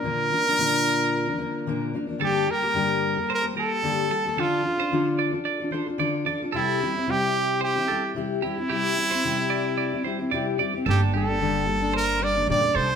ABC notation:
X:1
M:4/4
L:1/16
Q:"Swing 16ths" 1/4=111
K:Gdor
V:1 name="Clean electric guitar"
z16 | A2 G4 z2 c2 B z3 A z | A2 z c2 z d z d2 c z d z d z | A2 G4 z2 c2 A z3 G z |
G2 z c2 z d z d2 c z d z d z | A2 G4 z2 c2 B z3 A z |]
V:2 name="Trumpet"
B12- B2 z2 | G2 B6 B2 A6 | F6 z8 z2 | E4 G4 G4 z2 E2- |
E12- E2 z2 | G2 A6 B2 d2 d2 c2 |]
V:3 name="Steel-string acoustic guitar"
[B,,D,F,B,DB]2 [F,B,D] [F,B,DB] [B,,D,F,B,DB]4- [B,,D,F,B,DB] [F,B,DB] [F,B,DB]2 [B,,D,F,B,DB]2 [F,B,DB] [F,B,DB] | [G,,D,G,B,GA]2 A [G,B,GA] [G,,D,G,B,G]3 [G,B,GA]2 [G,B,GA] [G,B,GA]2 [G,,D,G,B,GA]2 [G,B,GA] [G,B,GA] | [D,F,DFA]2 [F,DFA] [DFA] [D,F,DFA]3 [DFA]2 [DFA] [F,DFA] [DFA] [D,F,DFA]2 [F,DFA] [DFA] | [C,G,CEG]2 [G,CEG] [CEG] [C,G,CEG]4- [C,G,CEG] [CEG] [G,CEG]2 [C,G,CEG]2 [G,CEG] [CEG] |
[C,G,CEG]2 [G,CEG] [CEG] [C,G,CEG]4- [C,G,CEG] [CEG] [G,CEG] [CEG] [C,G,CEG]2 [G,CEG] [CEG] | [G,,D,G,B,DA]2 [G,B,DA] [G,B,DA] [G,,D,G,B,DA]2 [G,B,DA] [G,B,DA]3 [G,B,DA] [G,B,DA] [G,,D,G,B,DA] [G,B,A] [G,B,DA]2 |]
V:4 name="Upright bass" clef=bass
z16 | z16 | z16 | z16 |
z16 | G,,,12 B,,,2 C,,2 |]